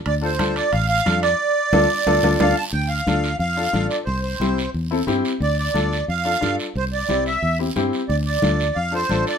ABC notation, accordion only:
X:1
M:4/4
L:1/8
Q:1/4=179
K:Dm
V:1 name="Accordion"
d c2 d f f2 d- | d6 f a | g f3 f3 d | c c3 z4 |
d d3 f3 z | c d2 e2 z3 | d d3 f c2 d |]